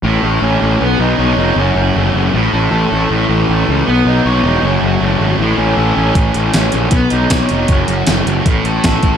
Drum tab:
HH |--------|--------|--------|--------|
TB |--------|--------|--------|--------|
SD |--------|--------|--------|--------|
BD |--------|--------|--------|--------|

HH |xxxxxxxx|xxxxxxxx|
TB |--x---x-|--x---x-|
SD |--o---o-|--o---o-|
BD |o---o-o-|o---o-oo|